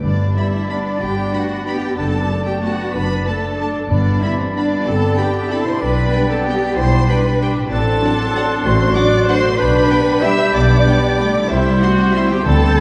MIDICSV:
0, 0, Header, 1, 13, 480
1, 0, Start_track
1, 0, Key_signature, 1, "major"
1, 0, Tempo, 323276
1, 48, Time_signature, 3, 2, 24, 8
1, 6769, Tempo, 314961
1, 14929, Tempo, 319659
1, 19267, End_track
2, 0, Start_track
2, 0, Title_t, "Flute"
2, 0, Program_c, 0, 73
2, 57, Note_on_c, 0, 83, 56
2, 2883, Note_off_c, 0, 83, 0
2, 2939, Note_on_c, 0, 81, 57
2, 5748, Note_off_c, 0, 81, 0
2, 5810, Note_on_c, 0, 83, 60
2, 8638, Note_off_c, 0, 83, 0
2, 8687, Note_on_c, 0, 79, 75
2, 11133, Note_off_c, 0, 79, 0
2, 11592, Note_on_c, 0, 84, 85
2, 14396, Note_off_c, 0, 84, 0
2, 14446, Note_on_c, 0, 83, 88
2, 17348, Note_on_c, 0, 84, 76
2, 17371, Note_off_c, 0, 83, 0
2, 18775, Note_on_c, 0, 83, 71
2, 18798, Note_off_c, 0, 84, 0
2, 19267, Note_off_c, 0, 83, 0
2, 19267, End_track
3, 0, Start_track
3, 0, Title_t, "Violin section"
3, 0, Program_c, 1, 48
3, 554, Note_on_c, 1, 83, 45
3, 672, Note_off_c, 1, 83, 0
3, 1032, Note_on_c, 1, 83, 48
3, 1150, Note_off_c, 1, 83, 0
3, 1980, Note_on_c, 1, 83, 51
3, 2099, Note_off_c, 1, 83, 0
3, 2483, Note_on_c, 1, 83, 53
3, 2602, Note_off_c, 1, 83, 0
3, 3396, Note_on_c, 1, 81, 41
3, 3515, Note_off_c, 1, 81, 0
3, 3913, Note_on_c, 1, 81, 51
3, 4032, Note_off_c, 1, 81, 0
3, 4862, Note_on_c, 1, 81, 48
3, 4981, Note_off_c, 1, 81, 0
3, 5348, Note_on_c, 1, 81, 53
3, 5467, Note_off_c, 1, 81, 0
3, 6290, Note_on_c, 1, 83, 50
3, 6409, Note_off_c, 1, 83, 0
3, 6783, Note_on_c, 1, 83, 54
3, 6905, Note_off_c, 1, 83, 0
3, 7714, Note_on_c, 1, 83, 53
3, 7836, Note_off_c, 1, 83, 0
3, 8212, Note_on_c, 1, 83, 54
3, 8334, Note_off_c, 1, 83, 0
3, 9183, Note_on_c, 1, 79, 54
3, 9305, Note_off_c, 1, 79, 0
3, 9697, Note_on_c, 1, 79, 64
3, 9818, Note_off_c, 1, 79, 0
3, 10637, Note_on_c, 1, 79, 53
3, 10759, Note_off_c, 1, 79, 0
3, 11137, Note_on_c, 1, 79, 70
3, 11259, Note_off_c, 1, 79, 0
3, 12080, Note_on_c, 1, 78, 64
3, 12202, Note_off_c, 1, 78, 0
3, 12560, Note_on_c, 1, 78, 72
3, 12682, Note_off_c, 1, 78, 0
3, 13473, Note_on_c, 1, 78, 63
3, 13595, Note_off_c, 1, 78, 0
3, 13968, Note_on_c, 1, 78, 68
3, 14090, Note_off_c, 1, 78, 0
3, 14922, Note_on_c, 1, 79, 69
3, 15042, Note_off_c, 1, 79, 0
3, 15414, Note_on_c, 1, 79, 68
3, 15534, Note_off_c, 1, 79, 0
3, 16370, Note_on_c, 1, 79, 60
3, 16490, Note_off_c, 1, 79, 0
3, 16874, Note_on_c, 1, 79, 67
3, 16995, Note_off_c, 1, 79, 0
3, 17802, Note_on_c, 1, 84, 65
3, 17922, Note_off_c, 1, 84, 0
3, 18292, Note_on_c, 1, 84, 66
3, 18412, Note_off_c, 1, 84, 0
3, 19267, End_track
4, 0, Start_track
4, 0, Title_t, "Violin section"
4, 0, Program_c, 2, 48
4, 45, Note_on_c, 2, 74, 67
4, 500, Note_off_c, 2, 74, 0
4, 527, Note_on_c, 2, 76, 63
4, 1023, Note_off_c, 2, 76, 0
4, 1033, Note_on_c, 2, 74, 59
4, 1496, Note_on_c, 2, 79, 68
4, 1503, Note_off_c, 2, 74, 0
4, 1976, Note_off_c, 2, 79, 0
4, 1980, Note_on_c, 2, 78, 62
4, 2457, Note_on_c, 2, 79, 66
4, 2477, Note_off_c, 2, 78, 0
4, 2918, Note_off_c, 2, 79, 0
4, 2921, Note_on_c, 2, 81, 70
4, 3627, Note_off_c, 2, 81, 0
4, 3628, Note_on_c, 2, 79, 54
4, 3880, Note_off_c, 2, 79, 0
4, 3885, Note_on_c, 2, 78, 69
4, 4352, Note_off_c, 2, 78, 0
4, 4360, Note_on_c, 2, 83, 88
4, 4828, Note_off_c, 2, 83, 0
4, 4839, Note_on_c, 2, 81, 61
4, 5564, Note_off_c, 2, 81, 0
4, 5780, Note_on_c, 2, 74, 71
4, 6227, Note_off_c, 2, 74, 0
4, 6259, Note_on_c, 2, 76, 79
4, 6502, Note_on_c, 2, 72, 61
4, 6515, Note_off_c, 2, 76, 0
4, 6740, Note_on_c, 2, 74, 73
4, 6757, Note_off_c, 2, 72, 0
4, 7219, Note_off_c, 2, 74, 0
4, 7229, Note_on_c, 2, 81, 85
4, 7708, Note_on_c, 2, 79, 66
4, 7715, Note_off_c, 2, 81, 0
4, 8203, Note_off_c, 2, 79, 0
4, 8221, Note_on_c, 2, 81, 73
4, 8443, Note_on_c, 2, 84, 75
4, 8462, Note_off_c, 2, 81, 0
4, 8683, Note_on_c, 2, 83, 85
4, 8684, Note_off_c, 2, 84, 0
4, 9427, Note_on_c, 2, 81, 67
4, 9429, Note_off_c, 2, 83, 0
4, 9680, Note_off_c, 2, 81, 0
4, 9682, Note_on_c, 2, 79, 81
4, 10125, Note_on_c, 2, 84, 103
4, 10151, Note_off_c, 2, 79, 0
4, 10603, Note_off_c, 2, 84, 0
4, 10633, Note_on_c, 2, 83, 82
4, 11361, Note_off_c, 2, 83, 0
4, 11564, Note_on_c, 2, 81, 94
4, 12942, Note_off_c, 2, 81, 0
4, 13012, Note_on_c, 2, 84, 89
4, 13464, Note_on_c, 2, 86, 92
4, 13490, Note_off_c, 2, 84, 0
4, 13968, Note_on_c, 2, 84, 101
4, 13974, Note_off_c, 2, 86, 0
4, 14426, Note_on_c, 2, 83, 101
4, 14434, Note_off_c, 2, 84, 0
4, 15406, Note_off_c, 2, 83, 0
4, 15412, Note_on_c, 2, 88, 109
4, 15883, Note_off_c, 2, 88, 0
4, 15891, Note_on_c, 2, 86, 85
4, 17294, Note_off_c, 2, 86, 0
4, 17306, Note_on_c, 2, 76, 94
4, 17778, Note_on_c, 2, 78, 84
4, 17781, Note_off_c, 2, 76, 0
4, 18263, Note_on_c, 2, 76, 79
4, 18283, Note_off_c, 2, 78, 0
4, 18508, Note_on_c, 2, 79, 76
4, 18520, Note_off_c, 2, 76, 0
4, 18738, Note_on_c, 2, 81, 99
4, 18752, Note_off_c, 2, 79, 0
4, 19267, Note_off_c, 2, 81, 0
4, 19267, End_track
5, 0, Start_track
5, 0, Title_t, "Oboe"
5, 0, Program_c, 3, 68
5, 65, Note_on_c, 3, 74, 59
5, 2887, Note_off_c, 3, 74, 0
5, 2937, Note_on_c, 3, 74, 61
5, 5747, Note_off_c, 3, 74, 0
5, 5796, Note_on_c, 3, 74, 56
5, 8631, Note_off_c, 3, 74, 0
5, 8695, Note_on_c, 3, 74, 68
5, 11137, Note_off_c, 3, 74, 0
5, 11601, Note_on_c, 3, 78, 76
5, 14401, Note_off_c, 3, 78, 0
5, 14440, Note_on_c, 3, 79, 88
5, 17257, Note_off_c, 3, 79, 0
5, 17355, Note_on_c, 3, 79, 86
5, 19267, Note_off_c, 3, 79, 0
5, 19267, End_track
6, 0, Start_track
6, 0, Title_t, "Cello section"
6, 0, Program_c, 4, 48
6, 43, Note_on_c, 4, 62, 65
6, 500, Note_off_c, 4, 62, 0
6, 532, Note_on_c, 4, 64, 78
6, 1030, Note_on_c, 4, 62, 73
6, 1036, Note_off_c, 4, 64, 0
6, 1501, Note_off_c, 4, 62, 0
6, 1501, Note_on_c, 4, 67, 66
6, 1978, Note_off_c, 4, 67, 0
6, 1983, Note_on_c, 4, 66, 77
6, 2468, Note_off_c, 4, 66, 0
6, 2479, Note_on_c, 4, 67, 76
6, 2929, Note_off_c, 4, 67, 0
6, 2945, Note_on_c, 4, 69, 66
6, 3639, Note_off_c, 4, 69, 0
6, 3657, Note_on_c, 4, 67, 75
6, 3754, Note_off_c, 4, 67, 0
6, 3895, Note_on_c, 4, 66, 80
6, 4357, Note_off_c, 4, 66, 0
6, 4367, Note_on_c, 4, 71, 73
6, 4841, Note_on_c, 4, 69, 72
6, 4842, Note_off_c, 4, 71, 0
6, 5580, Note_off_c, 4, 69, 0
6, 5817, Note_on_c, 4, 62, 81
6, 6247, Note_off_c, 4, 62, 0
6, 6259, Note_on_c, 4, 64, 97
6, 6506, Note_on_c, 4, 60, 66
6, 6515, Note_off_c, 4, 64, 0
6, 6608, Note_off_c, 4, 60, 0
6, 6755, Note_on_c, 4, 62, 83
6, 7227, Note_off_c, 4, 62, 0
6, 7239, Note_on_c, 4, 69, 89
6, 7720, Note_off_c, 4, 69, 0
6, 7726, Note_on_c, 4, 67, 85
6, 8220, Note_on_c, 4, 69, 98
6, 8222, Note_off_c, 4, 67, 0
6, 8462, Note_off_c, 4, 69, 0
6, 8463, Note_on_c, 4, 72, 91
6, 8690, Note_on_c, 4, 71, 91
6, 8694, Note_off_c, 4, 72, 0
6, 9418, Note_off_c, 4, 71, 0
6, 9438, Note_on_c, 4, 69, 84
6, 9678, Note_on_c, 4, 67, 91
6, 9686, Note_off_c, 4, 69, 0
6, 10140, Note_off_c, 4, 67, 0
6, 10158, Note_on_c, 4, 72, 97
6, 10616, Note_on_c, 4, 71, 87
6, 10629, Note_off_c, 4, 72, 0
6, 11352, Note_off_c, 4, 71, 0
6, 11587, Note_on_c, 4, 69, 89
6, 12954, Note_off_c, 4, 69, 0
6, 13003, Note_on_c, 4, 72, 94
6, 13483, Note_on_c, 4, 74, 115
6, 13486, Note_off_c, 4, 72, 0
6, 13963, Note_on_c, 4, 72, 110
6, 13973, Note_off_c, 4, 74, 0
6, 14431, Note_off_c, 4, 72, 0
6, 14433, Note_on_c, 4, 71, 109
6, 15390, Note_off_c, 4, 71, 0
6, 15403, Note_on_c, 4, 76, 117
6, 15875, Note_on_c, 4, 74, 101
6, 15879, Note_off_c, 4, 76, 0
6, 17314, Note_off_c, 4, 74, 0
6, 17316, Note_on_c, 4, 64, 94
6, 17786, Note_off_c, 4, 64, 0
6, 17791, Note_on_c, 4, 66, 108
6, 18290, Note_off_c, 4, 66, 0
6, 18291, Note_on_c, 4, 64, 98
6, 18531, Note_on_c, 4, 67, 96
6, 18533, Note_off_c, 4, 64, 0
6, 18751, Note_on_c, 4, 69, 101
6, 18764, Note_off_c, 4, 67, 0
6, 19267, Note_off_c, 4, 69, 0
6, 19267, End_track
7, 0, Start_track
7, 0, Title_t, "Bassoon"
7, 0, Program_c, 5, 70
7, 44, Note_on_c, 5, 62, 58
7, 2876, Note_off_c, 5, 62, 0
7, 2937, Note_on_c, 5, 62, 55
7, 5747, Note_off_c, 5, 62, 0
7, 5797, Note_on_c, 5, 62, 61
7, 8631, Note_off_c, 5, 62, 0
7, 8684, Note_on_c, 5, 62, 69
7, 11131, Note_off_c, 5, 62, 0
7, 11580, Note_on_c, 5, 62, 77
7, 14391, Note_off_c, 5, 62, 0
7, 14425, Note_on_c, 5, 62, 78
7, 17329, Note_on_c, 5, 60, 74
7, 17351, Note_off_c, 5, 62, 0
7, 18769, Note_off_c, 5, 60, 0
7, 18776, Note_on_c, 5, 62, 68
7, 19267, Note_off_c, 5, 62, 0
7, 19267, End_track
8, 0, Start_track
8, 0, Title_t, "Harp"
8, 0, Program_c, 6, 46
8, 0, Note_on_c, 6, 43, 53
8, 0, Note_on_c, 6, 62, 41
8, 0, Note_on_c, 6, 67, 41
8, 0, Note_on_c, 6, 71, 41
8, 0, Note_on_c, 6, 74, 36
8, 2667, Note_on_c, 6, 42, 47
8, 2720, Note_off_c, 6, 62, 0
8, 2738, Note_on_c, 6, 62, 42
8, 2802, Note_on_c, 6, 69, 42
8, 2820, Note_off_c, 6, 43, 0
8, 2847, Note_off_c, 6, 74, 0
8, 2865, Note_on_c, 6, 74, 42
8, 2889, Note_off_c, 6, 67, 0
8, 2922, Note_off_c, 6, 71, 0
8, 5544, Note_on_c, 6, 43, 51
8, 5594, Note_off_c, 6, 62, 0
8, 5612, Note_on_c, 6, 62, 47
8, 5674, Note_on_c, 6, 71, 44
8, 5687, Note_off_c, 6, 42, 0
8, 5724, Note_off_c, 6, 74, 0
8, 5742, Note_on_c, 6, 74, 48
8, 5754, Note_off_c, 6, 69, 0
8, 8415, Note_on_c, 6, 47, 58
8, 8466, Note_off_c, 6, 62, 0
8, 8484, Note_on_c, 6, 62, 52
8, 8555, Note_on_c, 6, 67, 50
8, 8578, Note_off_c, 6, 43, 0
8, 8603, Note_off_c, 6, 74, 0
8, 8622, Note_on_c, 6, 74, 48
8, 11315, Note_on_c, 6, 45, 67
8, 11381, Note_on_c, 6, 60, 56
8, 11452, Note_on_c, 6, 66, 58
8, 11461, Note_off_c, 6, 47, 0
8, 11504, Note_off_c, 6, 74, 0
8, 11523, Note_on_c, 6, 74, 56
8, 11532, Note_off_c, 6, 67, 0
8, 11534, Note_off_c, 6, 71, 0
8, 14176, Note_on_c, 6, 47, 73
8, 14245, Note_on_c, 6, 59, 59
8, 14313, Note_on_c, 6, 67, 58
8, 14337, Note_off_c, 6, 45, 0
8, 14364, Note_off_c, 6, 74, 0
8, 14366, Note_off_c, 6, 62, 0
8, 14370, Note_off_c, 6, 60, 0
8, 14382, Note_on_c, 6, 74, 58
8, 14405, Note_off_c, 6, 66, 0
8, 17064, Note_on_c, 6, 48, 73
8, 17133, Note_on_c, 6, 55, 63
8, 17199, Note_on_c, 6, 64, 57
8, 17202, Note_off_c, 6, 47, 0
8, 17235, Note_off_c, 6, 59, 0
8, 17268, Note_on_c, 6, 72, 61
8, 17303, Note_off_c, 6, 74, 0
8, 18501, Note_on_c, 6, 50, 63
8, 18547, Note_off_c, 6, 55, 0
8, 18565, Note_on_c, 6, 55, 48
8, 18634, Note_on_c, 6, 62, 52
8, 18655, Note_off_c, 6, 48, 0
8, 18705, Note_on_c, 6, 71, 51
8, 18714, Note_off_c, 6, 67, 0
8, 18722, Note_off_c, 6, 64, 0
8, 18756, Note_off_c, 6, 72, 0
8, 19267, Note_off_c, 6, 50, 0
8, 19267, Note_off_c, 6, 55, 0
8, 19267, Note_off_c, 6, 62, 0
8, 19267, Note_off_c, 6, 71, 0
8, 19267, End_track
9, 0, Start_track
9, 0, Title_t, "Clarinet"
9, 0, Program_c, 7, 71
9, 60, Note_on_c, 7, 55, 55
9, 508, Note_off_c, 7, 55, 0
9, 537, Note_on_c, 7, 55, 61
9, 1010, Note_off_c, 7, 55, 0
9, 1019, Note_on_c, 7, 55, 61
9, 1509, Note_on_c, 7, 59, 61
9, 1531, Note_off_c, 7, 55, 0
9, 1957, Note_off_c, 7, 59, 0
9, 1966, Note_on_c, 7, 57, 64
9, 2476, Note_on_c, 7, 59, 75
9, 2499, Note_off_c, 7, 57, 0
9, 2924, Note_off_c, 7, 59, 0
9, 2933, Note_on_c, 7, 62, 64
9, 3633, Note_off_c, 7, 62, 0
9, 3639, Note_on_c, 7, 59, 60
9, 3897, Note_on_c, 7, 57, 73
9, 3919, Note_off_c, 7, 59, 0
9, 4381, Note_on_c, 7, 62, 84
9, 4403, Note_off_c, 7, 57, 0
9, 4848, Note_off_c, 7, 62, 0
9, 4859, Note_on_c, 7, 62, 62
9, 5574, Note_off_c, 7, 62, 0
9, 5815, Note_on_c, 7, 55, 69
9, 6246, Note_off_c, 7, 55, 0
9, 6271, Note_on_c, 7, 55, 74
9, 6384, Note_off_c, 7, 55, 0
9, 6527, Note_on_c, 7, 52, 65
9, 6760, Note_on_c, 7, 55, 74
9, 6782, Note_off_c, 7, 52, 0
9, 7233, Note_off_c, 7, 55, 0
9, 7242, Note_on_c, 7, 60, 88
9, 7712, Note_on_c, 7, 59, 75
9, 7735, Note_off_c, 7, 60, 0
9, 8222, Note_on_c, 7, 60, 84
9, 8245, Note_off_c, 7, 59, 0
9, 8451, Note_on_c, 7, 64, 72
9, 8474, Note_off_c, 7, 60, 0
9, 8691, Note_on_c, 7, 62, 79
9, 8714, Note_off_c, 7, 64, 0
9, 9422, Note_on_c, 7, 60, 76
9, 9445, Note_off_c, 7, 62, 0
9, 9652, Note_off_c, 7, 60, 0
9, 9661, Note_on_c, 7, 59, 86
9, 10131, Note_on_c, 7, 64, 97
9, 10154, Note_off_c, 7, 59, 0
9, 10605, Note_on_c, 7, 62, 78
9, 10628, Note_off_c, 7, 64, 0
9, 11347, Note_off_c, 7, 62, 0
9, 11570, Note_on_c, 7, 60, 91
9, 12945, Note_off_c, 7, 60, 0
9, 13006, Note_on_c, 7, 66, 105
9, 13464, Note_off_c, 7, 66, 0
9, 13473, Note_on_c, 7, 66, 107
9, 13961, Note_off_c, 7, 66, 0
9, 13970, Note_on_c, 7, 66, 97
9, 14435, Note_on_c, 7, 62, 107
9, 14458, Note_off_c, 7, 66, 0
9, 15400, Note_on_c, 7, 67, 112
9, 15422, Note_off_c, 7, 62, 0
9, 15862, Note_off_c, 7, 67, 0
9, 15871, Note_on_c, 7, 67, 94
9, 17343, Note_on_c, 7, 55, 84
9, 17365, Note_off_c, 7, 67, 0
9, 17795, Note_on_c, 7, 57, 97
9, 17817, Note_off_c, 7, 55, 0
9, 18280, Note_on_c, 7, 55, 88
9, 18302, Note_off_c, 7, 57, 0
9, 18524, Note_on_c, 7, 59, 75
9, 18546, Note_off_c, 7, 55, 0
9, 18754, Note_off_c, 7, 59, 0
9, 18763, Note_on_c, 7, 60, 103
9, 19267, Note_off_c, 7, 60, 0
9, 19267, End_track
10, 0, Start_track
10, 0, Title_t, "French horn section"
10, 0, Program_c, 8, 60
10, 540, Note_on_c, 8, 62, 48
10, 546, Note_on_c, 8, 59, 50
10, 721, Note_off_c, 8, 62, 0
10, 725, Note_off_c, 8, 59, 0
10, 1028, Note_on_c, 8, 62, 46
10, 1040, Note_on_c, 8, 59, 47
10, 1199, Note_off_c, 8, 62, 0
10, 1209, Note_off_c, 8, 59, 0
10, 1957, Note_on_c, 8, 59, 48
10, 1967, Note_on_c, 8, 62, 48
10, 2142, Note_off_c, 8, 59, 0
10, 2149, Note_off_c, 8, 62, 0
10, 2466, Note_on_c, 8, 59, 50
10, 2472, Note_on_c, 8, 62, 49
10, 2636, Note_off_c, 8, 59, 0
10, 2641, Note_off_c, 8, 62, 0
10, 3372, Note_on_c, 8, 57, 48
10, 3380, Note_on_c, 8, 62, 45
10, 3557, Note_off_c, 8, 57, 0
10, 3563, Note_off_c, 8, 62, 0
10, 3879, Note_on_c, 8, 62, 44
10, 3882, Note_on_c, 8, 57, 46
10, 4054, Note_off_c, 8, 62, 0
10, 4057, Note_off_c, 8, 57, 0
10, 4837, Note_on_c, 8, 62, 54
10, 4841, Note_on_c, 8, 57, 50
10, 5019, Note_off_c, 8, 62, 0
10, 5022, Note_off_c, 8, 57, 0
10, 5342, Note_on_c, 8, 57, 51
10, 5346, Note_on_c, 8, 62, 44
10, 5510, Note_off_c, 8, 57, 0
10, 5513, Note_off_c, 8, 62, 0
10, 6267, Note_on_c, 8, 62, 52
10, 6271, Note_on_c, 8, 59, 52
10, 6446, Note_off_c, 8, 62, 0
10, 6450, Note_off_c, 8, 59, 0
10, 6759, Note_on_c, 8, 62, 53
10, 6764, Note_on_c, 8, 59, 49
10, 6933, Note_off_c, 8, 62, 0
10, 6938, Note_off_c, 8, 59, 0
10, 7710, Note_on_c, 8, 59, 50
10, 7710, Note_on_c, 8, 62, 50
10, 7892, Note_off_c, 8, 59, 0
10, 7893, Note_off_c, 8, 62, 0
10, 8223, Note_on_c, 8, 62, 58
10, 8228, Note_on_c, 8, 59, 49
10, 8394, Note_off_c, 8, 62, 0
10, 8398, Note_off_c, 8, 59, 0
10, 9172, Note_on_c, 8, 62, 56
10, 9174, Note_on_c, 8, 55, 58
10, 9356, Note_off_c, 8, 62, 0
10, 9357, Note_off_c, 8, 55, 0
10, 9674, Note_on_c, 8, 55, 65
10, 9683, Note_on_c, 8, 62, 58
10, 9846, Note_off_c, 8, 55, 0
10, 9853, Note_off_c, 8, 62, 0
10, 10632, Note_on_c, 8, 55, 66
10, 10633, Note_on_c, 8, 62, 57
10, 10809, Note_off_c, 8, 55, 0
10, 10810, Note_off_c, 8, 62, 0
10, 11111, Note_on_c, 8, 55, 60
10, 11111, Note_on_c, 8, 62, 59
10, 11281, Note_off_c, 8, 55, 0
10, 11282, Note_off_c, 8, 62, 0
10, 12018, Note_on_c, 8, 62, 68
10, 12034, Note_on_c, 8, 54, 70
10, 12205, Note_off_c, 8, 62, 0
10, 12218, Note_off_c, 8, 54, 0
10, 12523, Note_on_c, 8, 62, 69
10, 12534, Note_on_c, 8, 54, 66
10, 12697, Note_off_c, 8, 62, 0
10, 12705, Note_off_c, 8, 54, 0
10, 13484, Note_on_c, 8, 54, 63
10, 13485, Note_on_c, 8, 62, 67
10, 13665, Note_off_c, 8, 54, 0
10, 13666, Note_off_c, 8, 62, 0
10, 13957, Note_on_c, 8, 54, 70
10, 13961, Note_on_c, 8, 62, 72
10, 14133, Note_off_c, 8, 54, 0
10, 14136, Note_off_c, 8, 62, 0
10, 14906, Note_on_c, 8, 55, 70
10, 14914, Note_on_c, 8, 62, 69
10, 15089, Note_off_c, 8, 55, 0
10, 15095, Note_off_c, 8, 62, 0
10, 15396, Note_on_c, 8, 55, 68
10, 15397, Note_on_c, 8, 62, 72
10, 15571, Note_off_c, 8, 55, 0
10, 15572, Note_off_c, 8, 62, 0
10, 16348, Note_on_c, 8, 62, 63
10, 16350, Note_on_c, 8, 55, 63
10, 16529, Note_off_c, 8, 62, 0
10, 16531, Note_off_c, 8, 55, 0
10, 16838, Note_on_c, 8, 62, 60
10, 16841, Note_on_c, 8, 55, 74
10, 17011, Note_off_c, 8, 62, 0
10, 17013, Note_off_c, 8, 55, 0
10, 17761, Note_on_c, 8, 60, 61
10, 17765, Note_on_c, 8, 55, 57
10, 17947, Note_off_c, 8, 60, 0
10, 17951, Note_off_c, 8, 55, 0
10, 18277, Note_on_c, 8, 60, 58
10, 18283, Note_on_c, 8, 55, 61
10, 18452, Note_off_c, 8, 60, 0
10, 18458, Note_off_c, 8, 55, 0
10, 19267, End_track
11, 0, Start_track
11, 0, Title_t, "Viola section"
11, 0, Program_c, 10, 48
11, 535, Note_on_c, 10, 55, 57
11, 1002, Note_off_c, 10, 55, 0
11, 1041, Note_on_c, 10, 59, 55
11, 1497, Note_off_c, 10, 59, 0
11, 1511, Note_on_c, 10, 62, 64
11, 2460, Note_off_c, 10, 62, 0
11, 2470, Note_on_c, 10, 59, 59
11, 3392, Note_on_c, 10, 57, 62
11, 3399, Note_off_c, 10, 59, 0
11, 3882, Note_on_c, 10, 59, 63
11, 3890, Note_off_c, 10, 57, 0
11, 4835, Note_off_c, 10, 59, 0
11, 4840, Note_on_c, 10, 57, 59
11, 5338, Note_on_c, 10, 62, 62
11, 5341, Note_off_c, 10, 57, 0
11, 5794, Note_off_c, 10, 62, 0
11, 5796, Note_on_c, 10, 59, 61
11, 6251, Note_on_c, 10, 55, 63
11, 6260, Note_off_c, 10, 59, 0
11, 6744, Note_on_c, 10, 59, 70
11, 6756, Note_off_c, 10, 55, 0
11, 7691, Note_off_c, 10, 59, 0
11, 7697, Note_on_c, 10, 62, 72
11, 8188, Note_on_c, 10, 64, 75
11, 8208, Note_off_c, 10, 62, 0
11, 8673, Note_on_c, 10, 62, 69
11, 8677, Note_off_c, 10, 64, 0
11, 9159, Note_off_c, 10, 62, 0
11, 9160, Note_on_c, 10, 59, 74
11, 10143, Note_off_c, 10, 59, 0
11, 10143, Note_on_c, 10, 55, 75
11, 11109, Note_on_c, 10, 62, 75
11, 11115, Note_off_c, 10, 55, 0
11, 11568, Note_off_c, 10, 62, 0
11, 11569, Note_on_c, 10, 60, 76
11, 12037, Note_off_c, 10, 60, 0
11, 12039, Note_on_c, 10, 62, 83
11, 12537, Note_on_c, 10, 60, 74
11, 12542, Note_off_c, 10, 62, 0
11, 13004, Note_on_c, 10, 57, 87
11, 13007, Note_off_c, 10, 60, 0
11, 13459, Note_on_c, 10, 54, 76
11, 13487, Note_off_c, 10, 57, 0
11, 13968, Note_on_c, 10, 57, 81
11, 13971, Note_off_c, 10, 54, 0
11, 14426, Note_on_c, 10, 62, 92
11, 14444, Note_off_c, 10, 57, 0
11, 14904, Note_on_c, 10, 59, 83
11, 14912, Note_off_c, 10, 62, 0
11, 15408, Note_off_c, 10, 59, 0
11, 15412, Note_on_c, 10, 55, 80
11, 15873, Note_on_c, 10, 59, 93
11, 15883, Note_off_c, 10, 55, 0
11, 16827, Note_off_c, 10, 59, 0
11, 16858, Note_on_c, 10, 57, 77
11, 17322, Note_off_c, 10, 57, 0
11, 17330, Note_on_c, 10, 55, 75
11, 18294, Note_off_c, 10, 55, 0
11, 18294, Note_on_c, 10, 60, 72
11, 18761, Note_on_c, 10, 59, 71
11, 18767, Note_off_c, 10, 60, 0
11, 19234, Note_off_c, 10, 59, 0
11, 19267, End_track
12, 0, Start_track
12, 0, Title_t, "Timpani"
12, 0, Program_c, 11, 47
12, 46, Note_on_c, 11, 43, 71
12, 738, Note_off_c, 11, 43, 0
12, 5807, Note_on_c, 11, 43, 79
12, 6473, Note_off_c, 11, 43, 0
12, 18754, Note_on_c, 11, 50, 86
12, 19267, Note_off_c, 11, 50, 0
12, 19267, End_track
13, 0, Start_track
13, 0, Title_t, "Double bass section"
13, 0, Program_c, 12, 48
13, 47, Note_on_c, 12, 31, 62
13, 451, Note_off_c, 12, 31, 0
13, 1499, Note_on_c, 12, 31, 68
13, 1895, Note_off_c, 12, 31, 0
13, 2934, Note_on_c, 12, 30, 56
13, 3319, Note_off_c, 12, 30, 0
13, 4371, Note_on_c, 12, 30, 70
13, 4760, Note_off_c, 12, 30, 0
13, 5799, Note_on_c, 12, 31, 68
13, 6188, Note_off_c, 12, 31, 0
13, 7227, Note_on_c, 12, 31, 67
13, 7631, Note_off_c, 12, 31, 0
13, 8688, Note_on_c, 12, 35, 73
13, 9091, Note_off_c, 12, 35, 0
13, 10152, Note_on_c, 12, 35, 78
13, 10544, Note_off_c, 12, 35, 0
13, 11582, Note_on_c, 12, 33, 87
13, 11970, Note_off_c, 12, 33, 0
13, 13008, Note_on_c, 12, 33, 93
13, 13405, Note_off_c, 12, 33, 0
13, 14439, Note_on_c, 12, 35, 80
13, 14835, Note_off_c, 12, 35, 0
13, 15878, Note_on_c, 12, 35, 92
13, 16272, Note_off_c, 12, 35, 0
13, 17320, Note_on_c, 12, 36, 83
13, 17706, Note_off_c, 12, 36, 0
13, 18753, Note_on_c, 12, 38, 86
13, 19155, Note_off_c, 12, 38, 0
13, 19267, End_track
0, 0, End_of_file